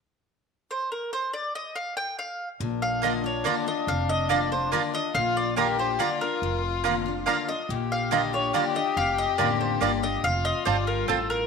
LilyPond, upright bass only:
\new Staff \with { instrumentName = "Upright bass" } { \clef bass \time 3/4 \key bes \major \tempo 4 = 141 r2. | r2. | bes,,2. | f,,2. |
bes,,2. | f,,2. | bes,,2. | f,,4 a,,4 g,,4 |
f,,4 g,,4 a,,4 | }